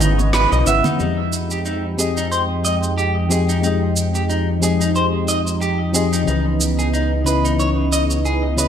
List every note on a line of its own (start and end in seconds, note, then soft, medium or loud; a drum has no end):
0.00 0.47 G#1 medium
0.00 0.65 C#3 loud
0.00 0.96 C#3 medium
0.00 0.96 E3 medium
0.00 1.01 E3 medium
0.00 0.96 B3 medium
0.00 0.66 C#4 medium
0.00 0.17 D#4 medium
0.00 0.67 E4 medium
0.00 0.68 B4 medium
0.00 0.96 D#5 medium
0.00 1.02 D#5 loud
0.00 low conga medium
0.00 shaker medium
0.19 muted conga soft
0.19 shaker soft
0.33 0.51 B4 loud
0.33 snare loud
0.33 high conga medium
0.33 shaker soft
0.52 0.64 B1 loud
0.52 0.66 D#5 medium
0.52 shaker soft
0.65 0.82 G#1 medium
0.65 0.96 C#3 medium
0.65 0.96 C#4 medium
0.65 0.96 E4 medium
0.65 0.97 B4 medium
0.65 0.84 E5 loud
0.65 0.97 F#5 medium
0.65 muted conga soft
0.65 shaker medium
0.84 0.99 D#4 medium
0.84 muted conga medium
0.84 high conga loud
0.84 low conga medium
0.84 shaker soft
0.96 6.24 F2 medium
0.96 1.93 F3 medium
0.96 6.23 F3 medium
0.96 6.23 G#3 medium
0.96 1.94 C4 medium
0.96 8.68 D#4 medium
0.96 1.17 D#4 medium
0.96 1.95 G4 medium
0.96 6.23 G5 medium
0.96 shaker soft
1.01 1.96 G#3 medium
1.01 1.97 D#5 medium
1.33 shaker medium
1.51 1.59 G4 medium
1.51 shaker soft
1.66 1.83 D#4 medium
1.66 shaker soft
1.97 2.18 F3 medium
1.97 2.18 C4 medium
1.97 2.19 G4 medium
1.97 2.16 G#4 medium
1.97 2.19 G#4 medium
1.97 2.20 D#5 medium
1.97 shaker medium
2.17 2.25 D#4 medium
2.17 shaker soft
2.32 2.42 C5 medium
2.32 shaker soft
2.65 2.75 D#5 medium
2.65 shaker medium
2.83 shaker soft
2.98 3.15 G4 medium
2.98 shaker soft
3.29 3.59 F3 medium
3.29 3.60 C4 medium
3.29 3.60 G4 medium
3.29 3.47 G#4 medium
3.29 3.60 G#4 medium
3.29 3.61 D#5 medium
3.29 shaker medium
3.49 3.57 D#4 medium
3.49 shaker soft
3.60 4.57 F3 medium
3.60 4.58 C4 medium
3.60 3.80 D#4 medium
3.60 4.59 G5 medium
3.60 shaker soft
3.65 4.60 G#3 medium
3.65 4.61 D#5 medium
3.97 shaker medium
4.15 4.23 G4 medium
4.15 shaker soft
4.30 4.47 D#4 medium
4.30 shaker soft
4.60 4.81 F3 medium
4.60 4.82 C4 medium
4.60 4.82 G4 medium
4.60 4.80 G#4 medium
4.60 4.83 G#4 medium
4.60 4.83 D#5 medium
4.60 shaker medium
4.81 4.89 D#4 medium
4.81 shaker soft
4.96 5.05 C5 medium
4.96 shaker soft
5.28 5.38 D#5 medium
5.28 shaker medium
5.47 shaker soft
5.62 5.79 G4 medium
5.62 shaker soft
5.93 6.23 F3 medium
5.93 6.23 C4 medium
5.93 6.24 G4 medium
5.93 6.11 G#4 medium
5.93 6.24 G#4 medium
5.93 6.25 D#5 loud
5.93 shaker medium
6.13 6.21 D#4 medium
6.13 shaker soft
6.24 8.68 C#2 medium
6.24 7.21 C#3 medium
6.24 8.68 C#3 medium
6.24 8.68 E3 medium
6.24 7.23 E3 medium
6.24 8.68 B3 medium
6.24 7.22 C#4 medium
6.24 6.44 D#4 medium
6.28 7.24 B4 medium
6.28 7.25 D#5 medium
6.28 shaker soft
6.61 shaker medium
6.79 6.87 G#4 medium
6.79 shaker soft
6.94 7.11 D#4 medium
6.94 shaker soft
7.25 7.45 C#3 medium
7.25 7.46 C#4 medium
7.25 7.46 E4 medium
7.25 7.44 B4 medium
7.25 7.47 B4 medium
7.25 7.47 D#5 medium
7.25 shaker medium
7.45 7.53 D#4 medium
7.45 shaker soft
7.60 7.69 C#5 medium
7.60 shaker soft
7.92 8.02 D#5 medium
7.92 shaker medium
8.11 shaker soft
8.25 8.43 G#4 medium
8.25 shaker soft
8.57 8.68 C#3 medium
8.57 8.68 C#4 medium
8.57 8.68 E4 medium
8.57 8.68 B4 medium
8.57 8.68 D#5 loud
8.57 shaker medium